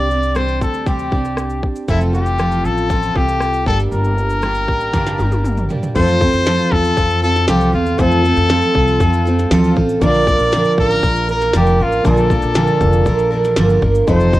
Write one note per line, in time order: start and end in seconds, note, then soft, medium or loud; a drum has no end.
0.00 0.57 C2 medium
0.00 0.11 C3 soft
0.00 0.11 G3 medium
0.00 0.12 C4 soft
0.00 0.10 D4 medium
0.00 0.37 D5 loud
0.10 0.35 C4 soft
0.10 0.36 D4 soft
0.10 0.35 G4 soft
0.10 shaker soft
0.23 shaker soft
0.35 0.86 G3 medium
0.35 0.87 C4 medium
0.35 0.87 D4 medium
0.35 0.87 G4 medium
0.35 0.61 C5 loud
0.35 cross-stick loud
0.35 shaker medium
0.48 shaker soft
0.61 1.08 D2 medium
0.61 0.89 A4 medium
0.61 kick medium
0.61 shaker medium
0.74 shaker soft
0.86 1.12 C3 medium
0.86 1.12 G3 medium
0.86 1.13 C4 medium
0.86 1.12 D4 medium
0.86 1.63 G4 medium
0.86 1.10 G4 medium
0.86 kick loud
0.86 shaker medium
0.99 shaker soft
1.12 1.59 C2 medium
1.12 1.88 C4 soft
1.12 1.89 D4 soft
1.12 1.88 G4 soft
1.12 kick medium
1.25 cross-stick soft
1.25 shaker medium
1.37 cross-stick loud
1.37 shaker medium
1.50 shaker soft
1.63 kick medium
1.76 shaker medium
1.88 2.61 F1 loud
1.88 2.14 F3 medium
1.88 2.14 C4 medium
1.88 2.00 E4 medium
1.88 2.13 F4 medium
1.88 2.12 A4 medium
1.88 kick medium
1.88 shaker medium
2.01 shaker soft
2.13 2.38 C4 soft
2.13 2.39 F4 soft
2.13 2.67 G4 medium
2.13 2.39 A4 soft
2.13 shaker medium
2.26 shaker medium
2.38 2.88 F3 medium
2.38 2.89 C4 medium
2.38 2.90 F4 medium
2.38 2.90 A4 medium
2.38 cross-stick medium
2.38 shaker medium
2.51 shaker soft
2.65 3.12 A1 medium
2.65 3.18 A4 loud
2.65 shaker medium
2.78 shaker soft
2.89 3.15 F3 medium
2.89 3.16 C4 medium
2.89 3.15 F4 medium
2.89 3.14 A4 medium
2.89 kick loud
2.89 shaker medium
3.03 shaker medium
3.15 3.63 C2 medium
3.15 3.66 C4 soft
3.15 3.66 F4 soft
3.15 3.67 G4 medium
3.15 3.65 A4 soft
3.15 kick medium
3.29 cross-stick soft
3.29 shaker medium
3.41 cross-stick loud
3.41 shaker medium
3.54 shaker soft
3.66 3.90 G1 medium
3.66 4.44 G2 soft
3.66 4.43 D3 soft
3.66 4.41 G3 medium
3.66 4.42 A#3 medium
3.66 4.43 D4 medium
3.66 4.43 G4 medium
3.66 3.79 A4 loud
3.66 kick loud
3.79 shaker medium
3.92 4.64 G1 medium
3.92 5.67 A#4 medium
3.92 shaker medium
4.04 shaker soft
4.18 shaker medium
4.30 shaker medium
4.42 4.93 G3 medium
4.42 4.93 A#3 medium
4.42 4.94 D4 medium
4.42 4.94 G4 medium
4.42 cross-stick loud
4.42 shaker medium
4.55 shaker soft
4.68 5.15 A1 medium
4.68 kick medium
4.80 shaker soft
4.93 5.19 G2 medium
4.93 5.19 D3 medium
4.93 5.19 G3 medium
4.93 5.19 A#3 medium
4.93 5.18 D4 medium
4.93 5.17 G4 medium
4.93 kick medium
4.93 snare medium
4.93 shaker medium
5.07 snare soft
5.07 shaker soft
5.18 5.66 G1 medium
5.18 5.71 G3 soft
5.18 5.70 A#3 soft
5.18 5.69 D4 soft
5.18 5.68 G4 medium
5.18 high tom medium
5.18 shaker soft
5.32 high tom medium
5.32 shaker medium
5.44 mid tom medium
5.44 shaker medium
5.57 mid tom medium
5.57 shaker soft
5.69 5.94 G3 soft
5.69 5.95 A#3 soft
5.69 5.95 D4 soft
5.69 5.95 G4 soft
5.69 floor tom medium
5.69 shaker medium
5.83 floor tom medium
5.83 shaker medium
5.94 6.30 F2 loud
5.94 6.21 F3 medium
5.94 7.94 A3 medium
5.94 7.95 C4 medium
5.94 6.21 C4 medium
5.94 6.21 F4 medium
5.94 7.95 F4 medium
5.94 6.19 A4 medium
5.94 6.74 C5 loud
5.94 kick loud
5.94 crash medium
5.94 shaker medium
5.98 7.96 C5 medium
6.08 shaker soft
6.20 6.46 C4 soft
6.20 6.47 F4 medium
6.20 6.46 A4 medium
6.20 kick medium
6.20 shaker medium
6.33 6.57 F2 medium
6.33 shaker medium
6.46 6.96 F3 medium
6.46 6.97 C4 medium
6.46 6.98 F4 medium
6.46 6.98 A4 medium
6.46 snare loud
6.46 shaker medium
6.59 shaker soft
6.72 6.95 E2 loud
6.72 7.23 A4 loud
6.72 kick medium
6.84 shaker medium
6.97 7.44 F2 loud
6.97 7.22 F3 medium
6.97 7.23 C4 medium
6.97 7.22 F4 medium
6.97 7.21 A4 medium
6.97 kick loud
6.97 shaker medium
7.10 shaker medium
7.22 7.47 C4 soft
7.22 7.48 F4 soft
7.22 7.48 A4 medium
7.22 7.47 A4 loud
7.22 shaker medium
7.36 snare soft
7.36 shaker medium
7.47 7.71 C2 loud
7.47 7.73 F3 medium
7.47 7.73 C4 medium
7.47 7.72 F4 medium
7.47 7.72 G4 medium
7.47 7.71 A4 medium
7.47 snare loud
7.47 shaker medium
7.61 shaker medium
7.72 7.97 E2 loud
7.72 7.98 C4 soft
7.72 7.98 F4 medium
7.72 8.02 F4 medium
7.72 7.98 A4 medium
7.86 shaker medium
7.98 8.34 F2 medium
7.98 8.24 F3 medium
7.98 9.97 A3 medium
7.98 9.98 C4 medium
7.98 8.24 C4 medium
7.98 8.24 F4 medium
7.98 9.98 F4 medium
7.98 8.22 A4 loud
7.98 9.78 A4 loud
7.98 9.99 C5 medium
7.98 kick loud
7.98 shaker medium
8.11 shaker medium
8.24 8.49 C4 soft
8.24 8.49 F4 medium
8.24 8.49 A4 medium
8.24 shaker medium
8.36 8.60 F2 loud
8.36 shaker medium
8.49 9.00 F3 medium
8.49 9.00 C4 medium
8.49 9.02 F4 medium
8.49 9.01 A4 loud
8.49 snare loud
8.49 shaker medium
8.62 shaker soft
8.75 8.98 C2 loud
8.75 kick loud
8.87 shaker medium
9.00 9.47 F2 loud
9.00 9.26 F3 medium
9.00 9.26 C4 medium
9.00 9.26 F4 medium
9.00 9.24 A4 medium
9.00 kick loud
9.00 shaker medium
9.13 shaker medium
9.25 9.50 C4 medium
9.25 9.51 F4 medium
9.25 9.51 A4 medium
9.25 shaker medium
9.39 snare soft
9.39 shaker medium
9.50 9.74 D2 loud
9.50 9.76 F3 loud
9.50 9.77 C4 loud
9.50 9.77 F4 loud
9.50 9.75 A4 loud
9.50 snare loud
9.50 shaker medium
9.64 shaker soft
9.76 10.00 A1 medium
9.76 10.02 C4 soft
9.76 10.03 F4 medium
9.76 10.02 A4 medium
9.76 kick medium
9.89 shaker medium
10.00 10.37 A#1 medium
10.00 10.27 A#2 medium
10.00 10.27 D3 medium
10.00 10.27 F3 medium
10.00 12.00 A#3 medium
10.00 10.28 A#3 loud
10.00 12.01 D4 medium
10.00 10.27 D4 loud
10.00 12.01 F4 medium
10.00 10.25 A#4 medium
10.00 10.74 D5 loud
10.00 kick loud
10.00 shaker medium
10.04 12.02 D5 medium
10.14 shaker soft
10.26 10.52 F3 medium
10.26 10.52 A#3 medium
10.26 10.53 D4 medium
10.26 10.52 A#4 medium
10.26 kick loud
10.26 shaker medium
10.39 10.63 A#1 medium
10.39 shaker medium
10.52 11.03 A#2 medium
10.52 11.03 D3 medium
10.52 11.02 F3 medium
10.52 11.02 A#3 medium
10.52 11.03 D4 loud
10.52 11.04 A#4 medium
10.52 snare loud
10.52 shaker medium
10.65 shaker soft
10.78 11.01 A1 loud
10.78 11.26 A#4 loud
10.78 kick loud
10.90 shaker medium
11.02 11.50 A#1 loud
11.02 11.28 F3 medium
11.02 11.29 A#3 medium
11.02 11.28 D4 medium
11.02 11.27 A#4 medium
11.02 kick loud
11.02 shaker medium
11.16 shaker medium
11.28 11.53 F3 soft
11.28 11.54 A#3 medium
11.28 11.54 D4 medium
11.28 11.54 A#4 medium
11.28 11.54 A#4 loud
11.28 shaker medium
11.41 snare soft
11.41 shaker medium
11.53 11.77 F1 loud
11.53 11.79 A#2 medium
11.53 11.79 D3 medium
11.53 11.80 F3 medium
11.53 11.79 A#3 medium
11.53 11.78 D4 loud
11.53 11.84 G4 loud
11.53 11.77 A#4 medium
11.53 snare loud
11.53 shaker medium
11.66 shaker medium
11.78 12.02 A1 loud
11.78 12.04 F3 soft
11.78 12.05 A#3 soft
11.78 12.05 D4 soft
11.78 12.06 F4 loud
11.78 12.04 A#4 medium
11.92 shaker medium
12.03 12.40 A#1 loud
12.03 12.30 A#2 medium
12.03 12.30 D3 medium
12.03 12.30 F3 medium
12.03 14.03 A#3 medium
12.03 12.30 A#3 medium
12.03 14.03 D4 medium
12.03 12.30 D4 medium
12.03 14.04 F4 medium
12.03 12.28 A#4 loud
12.03 kick loud
12.03 shaker medium
12.07 13.80 A4 medium
12.07 14.05 D5 medium
12.17 shaker medium
12.29 12.55 F3 medium
12.29 12.55 A#3 soft
12.29 12.56 D4 medium
12.29 12.55 A#4 medium
12.29 kick medium
12.29 shaker medium
12.42 12.66 A#1 medium
12.42 shaker medium
12.54 13.06 A#2 medium
12.54 13.06 D3 medium
12.54 13.05 F3 medium
12.54 13.05 A#3 medium
12.54 13.07 D4 medium
12.54 snare loud
12.54 shaker medium
12.67 shaker soft
12.81 13.04 F1 loud
12.81 kick loud
12.81 shaker medium
12.93 shaker medium
13.06 13.53 A#1 loud
13.06 13.31 F3 medium
13.06 13.32 A#3 medium
13.06 13.31 D4 medium
13.06 13.30 A#4 medium
13.06 kick loud
13.06 shaker medium
13.19 shaker medium
13.31 13.56 F3 medium
13.31 13.57 A#3 medium
13.31 13.57 D4 medium
13.31 13.57 A#4 medium
13.45 snare soft
13.45 shaker medium
13.56 13.80 G1 medium
13.56 13.82 A#2 medium
13.56 13.82 D3 loud
13.56 13.82 F3 loud
13.56 13.83 A#3 loud
13.56 13.82 D4 loud
13.56 13.80 A#4 loud
13.56 snare loud
13.56 shaker medium
13.70 shaker medium
13.81 14.06 G1 medium
13.81 14.06 F3 soft
13.81 14.08 A#3 medium
13.81 14.08 D4 medium
13.81 14.07 A#4 medium
13.81 kick medium
13.95 shaker medium
14.06 14.40 F1 medium
14.06 14.33 F3 medium
14.06 14.40 A3 medium
14.06 14.33 C4 medium
14.06 14.40 D#4 medium
14.06 14.33 D#4 medium
14.06 14.40 F4 medium
14.06 14.31 A4 medium
14.06 14.40 C5 loud
14.06 14.40 C5 medium
14.06 kick loud
14.06 shaker medium
14.20 shaker soft
14.33 14.40 C4 soft
14.33 14.40 D#4 medium
14.33 14.40 A4 medium
14.33 kick loud
14.33 shaker medium